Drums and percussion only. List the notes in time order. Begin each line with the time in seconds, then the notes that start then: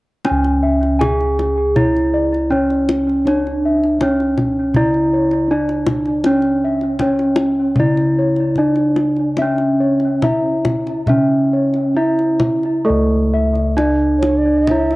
0.24 kendang high
0.44 kendang slap
0.83 kendang slap
1.01 kendang high, kendang low
1.21 kendang slap
1.39 kendang high
1.76 kendang low
1.97 kendang slap
2.35 kendang slap
2.52 kendang low
2.70 kendang slap
2.89 kendang high
3.09 kendang slap
3.27 kendang high
3.47 kendang slap
3.84 kendang slap
4.01 kendang high, kendang low
4.20 kendang slap
4.38 kendang high, kendang low
4.74 kendang low
4.94 kendang slap
5.31 kendang slap
5.69 kendang slap
5.87 kendang high, kendang low
6.06 kendang slap
6.24 kendang high
6.42 kendang slap
6.81 kendang slap
6.99 kendang high, kendang low
7.19 kendang slap
7.36 kendang high
7.75 kendang low
7.97 kendang slap
8.36 kendang slap
8.56 kendang low
8.76 kendang slap
8.96 kendang high
9.17 kendang slap
9.37 kendang high
9.58 kendang slap
10.00 kendang slap
10.22 kendang high, kendang low
10.65 kendang high, kendang low
10.87 kendang slap
11.07 kendang low
11.74 kendang slap
12.19 kendang slap
12.39 kendang high, kendang low
12.63 kendang slap
13.55 kendang slap
13.78 kendang high
14.23 kendang high
14.67 kendang low
14.91 kendang slap